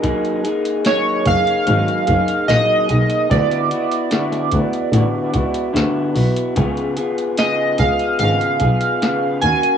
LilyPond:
<<
  \new Staff \with { instrumentName = "Synth keys" } { \time 4/4 \key cis \mixolydian \tempo 4 = 74 r4 cis''8 eis''4. dis''4 | d''2. r4 | r4 dis''8 eis''8 eis''4. gis''8 | }
  \new Staff \with { instrumentName = "Clean electric guitar" } { \time 4/4 \key cis \mixolydian <fis ais dis' gis'>8 <ais dis' gis'>8 <fis ais dis' gis'>8 <ais dis' gis'>8 <fis ais dis' gis'>8 <ais dis' gis'>8 <fis ais dis' gis'>8 <ais dis' gis'>8 | <d b e' fis'>8 <b e' fis'>8 <d b e' fis'>8 <b e' fis'>8 <d b e' fis'>8 <b e' fis'>8 <d b e' fis'>8 <b e' fis'>8 | <cis b eis' gis'>8 <b eis' gis'>8 <cis b eis' gis'>8 <b eis' gis'>8 <cis b eis' gis'>8 <b eis' gis'>8 <cis b eis' gis'>8 <ais cis' fis'>8 | }
  \new Staff \with { instrumentName = "Double bass" } { \clef bass \time 4/4 \key cis \mixolydian r4. fis,,8 gis,,8 fis,,8 ais,,8 b,,8 | d,4~ d,16 r16 d,8 a,,8 cis,8 d,8 b,,8 | cis,4~ cis,16 r16 cis,8 gis,,8 b,,8. r16 dis,8 | }
  \new DrumStaff \with { instrumentName = "Drums" } \drummode { \time 4/4 <hh bd>16 hh16 hh16 hh16 <hh sn>8 <hh bd>16 hh16 hh16 hh16 <hh bd>16 hh16 <hh sn>8 hh16 hh16 | <hh bd>16 hh16 hh16 hh16 <hh sn>16 <hh sn>16 <hh bd>16 hh16 hh8 <hh bd>16 hh16 <hh sn>8 hho16 hh16 | <hh bd>16 hh16 hh16 hh16 <hh sn>8 <hh bd>16 hh16 hh16 hh16 <hh bd>16 hh16 <hh sn>8 hh16 hh16 | }
>>